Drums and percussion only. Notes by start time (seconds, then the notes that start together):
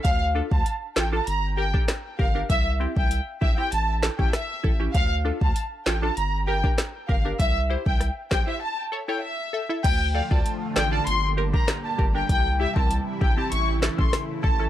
0.05 kick, closed hi-hat
0.51 kick
0.66 closed hi-hat
0.96 snare, clap
1.27 closed hi-hat
1.74 kick
1.88 cross-stick, snare, clap, closed hi-hat
2.19 kick
2.50 kick, closed hi-hat
2.97 kick
3.11 closed hi-hat
3.42 kick
3.72 closed hi-hat
4.03 snare, clap
4.19 kick
4.33 cross-stick, snare, closed hi-hat
4.64 kick
4.95 kick, closed hi-hat
5.41 kick
5.56 closed hi-hat
5.86 snare, clap
6.17 closed hi-hat
6.64 kick
6.78 cross-stick, snare, clap, closed hi-hat
7.09 kick
7.40 kick, closed hi-hat
7.86 kick
8.01 cross-stick, closed hi-hat
8.31 kick, snare, clap
9.84 kick, closed hi-hat, crash
10.31 kick
10.46 closed hi-hat
10.76 snare, clap
11.07 closed hi-hat
11.54 kick
11.68 cross-stick, snare, clap, closed hi-hat
11.99 kick
12.29 kick, closed hi-hat
12.76 kick
12.91 closed hi-hat
13.21 kick
13.52 closed hi-hat
13.83 snare, clap
13.99 kick
14.13 cross-stick, snare, closed hi-hat
14.44 kick